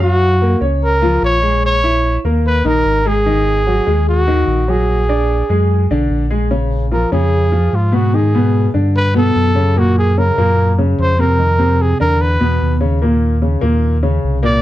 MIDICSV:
0, 0, Header, 1, 4, 480
1, 0, Start_track
1, 0, Tempo, 406504
1, 13, Time_signature, 4, 2, 24, 8
1, 17262, End_track
2, 0, Start_track
2, 0, Title_t, "Trumpet"
2, 0, Program_c, 0, 56
2, 38, Note_on_c, 0, 66, 105
2, 698, Note_off_c, 0, 66, 0
2, 985, Note_on_c, 0, 70, 98
2, 1425, Note_off_c, 0, 70, 0
2, 1469, Note_on_c, 0, 73, 105
2, 1907, Note_off_c, 0, 73, 0
2, 1960, Note_on_c, 0, 73, 109
2, 2618, Note_off_c, 0, 73, 0
2, 2912, Note_on_c, 0, 71, 99
2, 3148, Note_on_c, 0, 70, 94
2, 3165, Note_off_c, 0, 71, 0
2, 3631, Note_on_c, 0, 68, 93
2, 3649, Note_off_c, 0, 70, 0
2, 4819, Note_off_c, 0, 68, 0
2, 4830, Note_on_c, 0, 66, 94
2, 5552, Note_on_c, 0, 68, 84
2, 5570, Note_off_c, 0, 66, 0
2, 7219, Note_off_c, 0, 68, 0
2, 8185, Note_on_c, 0, 70, 76
2, 8400, Note_off_c, 0, 70, 0
2, 8419, Note_on_c, 0, 68, 88
2, 9150, Note_on_c, 0, 65, 76
2, 9168, Note_off_c, 0, 68, 0
2, 9384, Note_on_c, 0, 66, 78
2, 9401, Note_off_c, 0, 65, 0
2, 9626, Note_on_c, 0, 68, 80
2, 9644, Note_off_c, 0, 66, 0
2, 10337, Note_off_c, 0, 68, 0
2, 10587, Note_on_c, 0, 71, 102
2, 10801, Note_off_c, 0, 71, 0
2, 10830, Note_on_c, 0, 69, 91
2, 11555, Note_on_c, 0, 66, 81
2, 11572, Note_off_c, 0, 69, 0
2, 11782, Note_off_c, 0, 66, 0
2, 11787, Note_on_c, 0, 68, 86
2, 12027, Note_on_c, 0, 70, 86
2, 12045, Note_off_c, 0, 68, 0
2, 12739, Note_off_c, 0, 70, 0
2, 12994, Note_on_c, 0, 72, 87
2, 13226, Note_on_c, 0, 70, 89
2, 13244, Note_off_c, 0, 72, 0
2, 13956, Note_on_c, 0, 68, 82
2, 13973, Note_off_c, 0, 70, 0
2, 14174, Note_off_c, 0, 68, 0
2, 14181, Note_on_c, 0, 70, 88
2, 14421, Note_on_c, 0, 71, 88
2, 14439, Note_off_c, 0, 70, 0
2, 15136, Note_off_c, 0, 71, 0
2, 17055, Note_on_c, 0, 74, 103
2, 17262, Note_off_c, 0, 74, 0
2, 17262, End_track
3, 0, Start_track
3, 0, Title_t, "Grand piano"
3, 0, Program_c, 1, 0
3, 0, Note_on_c, 1, 54, 75
3, 0, Note_on_c, 1, 77, 80
3, 395, Note_off_c, 1, 54, 0
3, 398, Note_off_c, 1, 77, 0
3, 490, Note_on_c, 1, 58, 70
3, 493, Note_on_c, 1, 70, 67
3, 688, Note_off_c, 1, 58, 0
3, 690, Note_off_c, 1, 70, 0
3, 719, Note_on_c, 1, 61, 77
3, 728, Note_on_c, 1, 73, 74
3, 1118, Note_off_c, 1, 61, 0
3, 1123, Note_off_c, 1, 73, 0
3, 1202, Note_on_c, 1, 65, 88
3, 1206, Note_on_c, 1, 53, 86
3, 1600, Note_off_c, 1, 65, 0
3, 1602, Note_off_c, 1, 53, 0
3, 1677, Note_on_c, 1, 56, 73
3, 1681, Note_on_c, 1, 68, 78
3, 2076, Note_off_c, 1, 56, 0
3, 2078, Note_off_c, 1, 68, 0
3, 2168, Note_on_c, 1, 64, 71
3, 2171, Note_on_c, 1, 76, 77
3, 2562, Note_off_c, 1, 64, 0
3, 2565, Note_off_c, 1, 76, 0
3, 2653, Note_on_c, 1, 58, 76
3, 2661, Note_on_c, 1, 70, 78
3, 3045, Note_off_c, 1, 58, 0
3, 3050, Note_off_c, 1, 70, 0
3, 3123, Note_on_c, 1, 51, 83
3, 3130, Note_on_c, 1, 63, 83
3, 3519, Note_off_c, 1, 51, 0
3, 3523, Note_off_c, 1, 63, 0
3, 3601, Note_on_c, 1, 56, 79
3, 3607, Note_on_c, 1, 68, 75
3, 3801, Note_off_c, 1, 56, 0
3, 3804, Note_off_c, 1, 68, 0
3, 3846, Note_on_c, 1, 51, 83
3, 3851, Note_on_c, 1, 63, 79
3, 4240, Note_off_c, 1, 51, 0
3, 4243, Note_off_c, 1, 63, 0
3, 4329, Note_on_c, 1, 66, 68
3, 4330, Note_on_c, 1, 54, 70
3, 4525, Note_off_c, 1, 66, 0
3, 4526, Note_off_c, 1, 54, 0
3, 4564, Note_on_c, 1, 56, 72
3, 4566, Note_on_c, 1, 68, 74
3, 4959, Note_off_c, 1, 56, 0
3, 4960, Note_off_c, 1, 68, 0
3, 5043, Note_on_c, 1, 51, 89
3, 5047, Note_on_c, 1, 63, 84
3, 5438, Note_off_c, 1, 51, 0
3, 5441, Note_off_c, 1, 63, 0
3, 5526, Note_on_c, 1, 54, 76
3, 5528, Note_on_c, 1, 66, 77
3, 5920, Note_off_c, 1, 54, 0
3, 5921, Note_off_c, 1, 66, 0
3, 6010, Note_on_c, 1, 62, 76
3, 6013, Note_on_c, 1, 74, 75
3, 6402, Note_off_c, 1, 62, 0
3, 6404, Note_off_c, 1, 74, 0
3, 6487, Note_on_c, 1, 56, 74
3, 6497, Note_on_c, 1, 68, 71
3, 6880, Note_off_c, 1, 56, 0
3, 6886, Note_off_c, 1, 68, 0
3, 6974, Note_on_c, 1, 50, 88
3, 6977, Note_on_c, 1, 62, 83
3, 7364, Note_off_c, 1, 50, 0
3, 7366, Note_off_c, 1, 62, 0
3, 7444, Note_on_c, 1, 68, 74
3, 7446, Note_on_c, 1, 56, 76
3, 7642, Note_off_c, 1, 68, 0
3, 7643, Note_off_c, 1, 56, 0
3, 7683, Note_on_c, 1, 49, 75
3, 7685, Note_on_c, 1, 61, 78
3, 8078, Note_off_c, 1, 49, 0
3, 8080, Note_off_c, 1, 61, 0
3, 8165, Note_on_c, 1, 65, 68
3, 8167, Note_on_c, 1, 53, 65
3, 8362, Note_off_c, 1, 65, 0
3, 8363, Note_off_c, 1, 53, 0
3, 8406, Note_on_c, 1, 49, 78
3, 8407, Note_on_c, 1, 61, 82
3, 8800, Note_off_c, 1, 49, 0
3, 8801, Note_off_c, 1, 61, 0
3, 8880, Note_on_c, 1, 65, 74
3, 8882, Note_on_c, 1, 53, 75
3, 9277, Note_off_c, 1, 65, 0
3, 9278, Note_off_c, 1, 53, 0
3, 9351, Note_on_c, 1, 47, 86
3, 9359, Note_on_c, 1, 59, 84
3, 9555, Note_off_c, 1, 47, 0
3, 9559, Note_off_c, 1, 59, 0
3, 9605, Note_on_c, 1, 51, 68
3, 9607, Note_on_c, 1, 63, 65
3, 9803, Note_off_c, 1, 51, 0
3, 9804, Note_off_c, 1, 63, 0
3, 9853, Note_on_c, 1, 47, 83
3, 9857, Note_on_c, 1, 59, 82
3, 10245, Note_off_c, 1, 47, 0
3, 10247, Note_off_c, 1, 59, 0
3, 10317, Note_on_c, 1, 50, 71
3, 10320, Note_on_c, 1, 62, 73
3, 10716, Note_off_c, 1, 50, 0
3, 10718, Note_off_c, 1, 62, 0
3, 10791, Note_on_c, 1, 47, 83
3, 10797, Note_on_c, 1, 59, 88
3, 11192, Note_off_c, 1, 47, 0
3, 11196, Note_off_c, 1, 59, 0
3, 11274, Note_on_c, 1, 49, 74
3, 11281, Note_on_c, 1, 61, 78
3, 11477, Note_off_c, 1, 49, 0
3, 11481, Note_off_c, 1, 61, 0
3, 11525, Note_on_c, 1, 46, 76
3, 11527, Note_on_c, 1, 58, 76
3, 11921, Note_off_c, 1, 46, 0
3, 11922, Note_off_c, 1, 58, 0
3, 12015, Note_on_c, 1, 61, 68
3, 12017, Note_on_c, 1, 49, 70
3, 12210, Note_off_c, 1, 61, 0
3, 12211, Note_off_c, 1, 49, 0
3, 12251, Note_on_c, 1, 46, 87
3, 12257, Note_on_c, 1, 58, 83
3, 12644, Note_off_c, 1, 46, 0
3, 12648, Note_off_c, 1, 58, 0
3, 12732, Note_on_c, 1, 49, 80
3, 12736, Note_on_c, 1, 61, 71
3, 13125, Note_off_c, 1, 49, 0
3, 13127, Note_off_c, 1, 61, 0
3, 13207, Note_on_c, 1, 48, 82
3, 13207, Note_on_c, 1, 60, 82
3, 13405, Note_off_c, 1, 48, 0
3, 13405, Note_off_c, 1, 60, 0
3, 13442, Note_on_c, 1, 51, 68
3, 13447, Note_on_c, 1, 63, 71
3, 13643, Note_off_c, 1, 51, 0
3, 13645, Note_off_c, 1, 63, 0
3, 13679, Note_on_c, 1, 48, 83
3, 13684, Note_on_c, 1, 60, 80
3, 14078, Note_off_c, 1, 48, 0
3, 14080, Note_off_c, 1, 60, 0
3, 14165, Note_on_c, 1, 50, 71
3, 14169, Note_on_c, 1, 62, 73
3, 14561, Note_off_c, 1, 50, 0
3, 14564, Note_off_c, 1, 62, 0
3, 14643, Note_on_c, 1, 47, 86
3, 14651, Note_on_c, 1, 59, 82
3, 15040, Note_off_c, 1, 47, 0
3, 15044, Note_off_c, 1, 59, 0
3, 15121, Note_on_c, 1, 49, 76
3, 15121, Note_on_c, 1, 61, 75
3, 15322, Note_off_c, 1, 49, 0
3, 15322, Note_off_c, 1, 61, 0
3, 15367, Note_on_c, 1, 46, 77
3, 15374, Note_on_c, 1, 58, 78
3, 15762, Note_off_c, 1, 46, 0
3, 15766, Note_off_c, 1, 58, 0
3, 15844, Note_on_c, 1, 49, 69
3, 15845, Note_on_c, 1, 61, 67
3, 16044, Note_off_c, 1, 49, 0
3, 16044, Note_off_c, 1, 61, 0
3, 16068, Note_on_c, 1, 46, 81
3, 16075, Note_on_c, 1, 58, 83
3, 16471, Note_off_c, 1, 46, 0
3, 16475, Note_off_c, 1, 58, 0
3, 16563, Note_on_c, 1, 49, 76
3, 16565, Note_on_c, 1, 61, 74
3, 16960, Note_off_c, 1, 49, 0
3, 16960, Note_off_c, 1, 61, 0
3, 17034, Note_on_c, 1, 46, 84
3, 17034, Note_on_c, 1, 58, 88
3, 17237, Note_off_c, 1, 46, 0
3, 17238, Note_off_c, 1, 58, 0
3, 17262, End_track
4, 0, Start_track
4, 0, Title_t, "Sub bass"
4, 0, Program_c, 2, 38
4, 0, Note_on_c, 2, 42, 93
4, 655, Note_off_c, 2, 42, 0
4, 718, Note_on_c, 2, 37, 94
4, 1397, Note_off_c, 2, 37, 0
4, 1439, Note_on_c, 2, 34, 95
4, 2573, Note_off_c, 2, 34, 0
4, 2645, Note_on_c, 2, 39, 91
4, 3094, Note_off_c, 2, 39, 0
4, 3123, Note_on_c, 2, 34, 81
4, 3349, Note_off_c, 2, 34, 0
4, 3365, Note_on_c, 2, 32, 96
4, 4495, Note_off_c, 2, 32, 0
4, 4567, Note_on_c, 2, 39, 99
4, 5240, Note_off_c, 2, 39, 0
4, 5278, Note_on_c, 2, 34, 96
4, 6411, Note_off_c, 2, 34, 0
4, 6484, Note_on_c, 2, 42, 95
4, 6932, Note_off_c, 2, 42, 0
4, 6968, Note_on_c, 2, 35, 77
4, 7190, Note_off_c, 2, 35, 0
4, 7203, Note_on_c, 2, 34, 90
4, 8334, Note_off_c, 2, 34, 0
4, 8404, Note_on_c, 2, 41, 92
4, 9079, Note_off_c, 2, 41, 0
4, 9123, Note_on_c, 2, 44, 86
4, 10255, Note_off_c, 2, 44, 0
4, 10319, Note_on_c, 2, 43, 89
4, 10997, Note_off_c, 2, 43, 0
4, 11045, Note_on_c, 2, 42, 94
4, 12177, Note_off_c, 2, 42, 0
4, 12251, Note_on_c, 2, 42, 93
4, 12924, Note_off_c, 2, 42, 0
4, 12972, Note_on_c, 2, 41, 90
4, 14100, Note_off_c, 2, 41, 0
4, 14176, Note_on_c, 2, 40, 90
4, 14620, Note_off_c, 2, 40, 0
4, 14650, Note_on_c, 2, 40, 75
4, 14874, Note_off_c, 2, 40, 0
4, 14895, Note_on_c, 2, 39, 93
4, 16022, Note_off_c, 2, 39, 0
4, 16082, Note_on_c, 2, 39, 93
4, 16759, Note_off_c, 2, 39, 0
4, 16811, Note_on_c, 2, 36, 91
4, 17262, Note_off_c, 2, 36, 0
4, 17262, End_track
0, 0, End_of_file